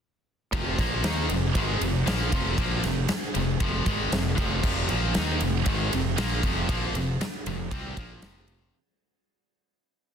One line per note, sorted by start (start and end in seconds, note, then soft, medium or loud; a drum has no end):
0.53 0.77 F1 medium
0.53 0.78 F2 medium
0.53 0.78 C3 medium
0.53 0.78 F3 loud
0.53 kick loud
0.53 ride loud
0.78 1.02 A#1 medium
0.78 1.03 A#2 medium
0.78 1.04 F3 medium
0.78 1.04 A#3 medium
0.78 kick medium
0.78 snare soft
0.78 ride medium
1.03 1.27 D#2 medium
1.03 1.29 D#3 medium
1.03 1.30 A#3 medium
1.03 1.30 D#4 medium
1.03 snare loud
1.03 ride loud
1.29 1.54 F1 medium
1.29 1.51 F2 medium
1.29 1.51 C3 medium
1.29 ride medium
1.55 1.80 G#1 medium
1.55 1.80 G#2 medium
1.55 1.80 D#3 medium
1.55 1.82 G#3 medium
1.55 kick loud
1.55 ride loud
1.80 2.05 F1 medium
1.80 2.01 F2 medium
1.80 2.01 C3 medium
1.80 ride medium
2.05 2.30 A#1 medium
2.05 2.31 A#2 medium
2.05 2.31 F3 medium
2.05 2.32 A#3 medium
2.05 snare loud
2.05 ride loud
2.30 2.57 F1 medium
2.30 2.56 F2 medium
2.30 2.56 C3 medium
2.30 2.56 F3 loud
2.30 kick loud
2.30 ride medium
2.56 2.83 A#1 loud
2.56 2.82 A#2 loud
2.56 2.83 F3 medium
2.56 2.83 A#3 loud
2.56 kick loud
2.56 ride loud
2.83 3.08 F1 medium
2.83 3.04 F2 medium
2.83 3.05 C3 medium
2.83 snare soft
2.83 ride medium
3.08 muted distorted electric guitar stroke medium
3.08 muted fingered electric bass stroke soft
3.08 snare loud
3.08 ride loud
3.34 3.60 F1 medium
3.34 3.56 F2 medium
3.34 3.56 C3 medium
3.34 ride medium
3.60 3.85 F1 medium
3.60 3.86 F2 medium
3.60 3.86 C3 medium
3.60 3.86 F3 loud
3.60 kick loud
3.60 ride medium
3.86 4.11 G#1 medium
3.86 4.12 G#2 medium
3.86 4.12 D#3 medium
3.86 4.12 G#3 medium
3.86 kick loud
3.86 ride medium
4.12 4.36 F1 medium
4.12 4.33 F2 medium
4.12 4.33 C3 medium
4.12 snare loud
4.12 ride loud
4.37 4.62 F1 medium
4.37 4.62 F2 medium
4.37 4.63 C3 loud
4.37 4.63 F3 loud
4.37 kick loud
4.37 ride medium
4.63 4.88 F1 medium
4.63 4.89 F2 medium
4.63 4.89 C3 medium
4.63 4.88 F3 loud
4.63 kick loud
4.63 crash medium
4.89 5.14 A#1 medium
4.89 5.14 A#2 medium
4.89 5.15 F3 loud
4.89 5.14 A#3 loud
4.89 ride medium
5.14 5.40 D#2 loud
5.14 5.40 D#3 loud
5.14 5.40 A#3 medium
5.14 5.41 D#4 medium
5.14 snare loud
5.14 ride medium
5.40 5.65 F1 medium
5.40 5.61 F2 medium
5.40 5.61 C3 medium
5.40 ride medium
5.66 5.90 G#1 loud
5.66 5.91 G#2 medium
5.66 5.92 D#3 medium
5.66 5.92 G#3 loud
5.66 kick loud
5.66 ride loud
5.92 6.17 F1 medium
5.92 6.13 F2 medium
5.92 6.13 C3 medium
5.92 ride medium
6.17 6.42 A#1 medium
6.17 6.42 A#2 medium
6.17 6.43 F3 medium
6.17 6.43 A#3 loud
6.17 snare loud
6.17 ride loud
6.43 6.68 F1 medium
6.43 6.69 F2 medium
6.43 6.69 C3 medium
6.43 6.69 F3 loud
6.43 kick loud
6.43 ride medium
6.69 6.93 A#1 loud
6.69 6.94 A#2 medium
6.69 6.95 F3 medium
6.69 6.95 A#3 medium
6.69 kick loud
6.69 ride loud
6.94 7.18 F1 medium
6.94 7.15 F2 medium
6.94 7.16 C3 medium
6.94 ride medium
7.20 muted fingered electric bass stroke soft
7.20 muted distorted electric guitar stroke medium
7.20 snare loud
7.20 ride medium
7.46 7.70 F1 medium
7.46 7.67 F2 medium
7.46 7.67 C3 medium
7.46 ride medium
7.71 7.95 C2 medium
7.71 7.96 C3 medium
7.71 7.97 G3 medium
7.71 7.97 C4 medium
7.71 kick loud
7.71 ride medium
7.97 8.21 A#1 medium
7.97 8.22 A#2 medium
7.97 8.22 F3 medium
7.97 8.23 A#3 medium
7.97 kick loud
7.97 ride medium
8.21 8.70 F1 medium
8.21 8.73 F2 medium
8.21 8.73 C3 loud
8.21 8.73 F3 loud
8.21 snare loud
8.21 ride loud
8.48 ride medium